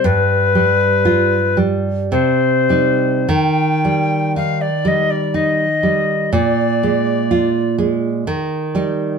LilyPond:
<<
  \new Staff \with { instrumentName = "Recorder" } { \time 3/4 \key ees \major \tempo 4 = 60 b'4. r8 c''4 | g''4 f''16 d''16 ees''16 d''16 ees''4 | d''4. r4. | }
  \new Staff \with { instrumentName = "Nylon-string guitar" } { \clef bass \time 3/4 \key ees \major g,8 g8 f'8 g8 c8 <g ees'>8 | ees8 g8 ees'8 g8 ees'8 g8 | bes,8 aes8 f'8 aes8 ees8 <g ees'>8 | }
>>